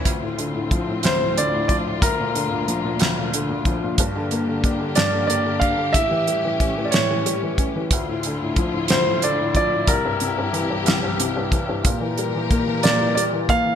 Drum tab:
HH |xxxxxx|xxxxxx|xxxxxx|xxxxxx|
SD |---o--|---o--|---o--|---o--|
BD |o-o--o|o----o|o-o--o|o-o--o|

HH |xxxxxx|xxxxxx|xxxxxx|
SD |---o--|---o--|---o--|
BD |o-o--o|o----o|o-o--o|